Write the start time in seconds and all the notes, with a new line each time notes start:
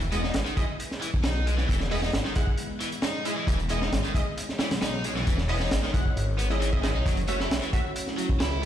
Already playing: E1 G#3 B3 B4 D#5
0.01 closed hi-hat
0.12 G#3 B3 E4 D#5, closed hi-hat
0.23 D#4, snare
0.34 G#1, snare, closed hi-hat
0.46 D#3, closed hi-hat
0.57 G#3 E4 D#5, kick, closed hi-hat
0.80 closed hi-hat
0.91 snare
1.02 E3, closed hi-hat
1.14 B1, kick
1.24 B1 D#4, snare, closed hi-hat
1.46 G#3, closed hi-hat
1.58 E3, snare
1.69 E1 E3, kick, closed hi-hat
1.80 snare
1.91 G#3 B3 E4 D#5, open hi-hat
2.02 D#4, snare
2.13 G#1, snare, closed hi-hat
2.25 D#3, snare
2.35 G#3 E4 F#5, kick, closed hi-hat
2.47 kick
2.58 closed hi-hat
2.80 E3, closed hi-hat
2.92 closed hi-hat
3.02 D#4, snare, closed hi-hat
3.25 G#3 E4 D#5, closed hi-hat
3.37 E3
3.47 E1 E3 C#5, kick, closed hi-hat
3.59 closed hi-hat
3.69 G#3 B3 E4 D#5, closed hi-hat
3.82 D#4, snare
3.92 G#1, snare, closed hi-hat
4.04 D#3, closed hi-hat
4.14 G#3 E4 D#5, kick, closed hi-hat
4.37 closed hi-hat
4.49 snare
4.59 E3, snare, closed hi-hat
4.71 B1, snare, closed hi-hat
4.82 B1 D#4, snare, closed hi-hat
5.04 G#3, closed hi-hat
5.16 E3, snare
5.27 E1 E3, kick, closed hi-hat
5.38 snare
5.48 G#3 B3 E4 D#5, open hi-hat
5.60 D#4, snare
5.71 G#1, snare, closed hi-hat
5.83 D#3, snare
5.94 G#3 E4 F#5, kick, closed hi-hat
6.06 kick
6.16 G#1, closed hi-hat
6.39 B3, closed hi-hat
6.50 G#3 E4 D#5, snare
6.61 E3, closed hi-hat
6.72 G#3 E4 D#5, kick
6.83 D#3 G#3 E4 D#5, snare, closed hi-hat
6.95 B1 D#4
7.06 F#1 F#3 A3 C#4 E4 F#4, kick, closed hi-hat
7.17 closed hi-hat
7.28 A3 C#4 F#4 E5, closed hi-hat
7.40 E4, snare
7.50 B1, snare, closed hi-hat
7.62 E3, closed hi-hat
7.73 A3 F#4 E5, kick, closed hi-hat
7.96 closed hi-hat
8.07 snare
8.18 F#3, closed hi-hat
8.29 C#2, kick
8.40 C#2 E4, snare, closed hi-hat
8.62 A3